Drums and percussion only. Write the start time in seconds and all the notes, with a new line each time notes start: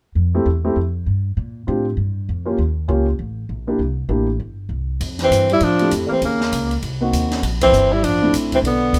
5.01 ride
5.19 snare, ride
5.32 hi-hat pedal, ride
5.50 ride
5.61 ride
5.79 ride
5.91 hi-hat pedal, ride
6.22 ride
6.41 snare
6.53 hi-hat pedal, ride
6.71 ride
6.82 ride
7.13 hi-hat pedal, ride
7.31 snare, ride
7.43 ride
7.61 kick, ride
7.73 hi-hat pedal
8.04 ride
8.34 hi-hat pedal, ride
8.52 kick, ride
8.65 ride
8.94 hi-hat pedal, ride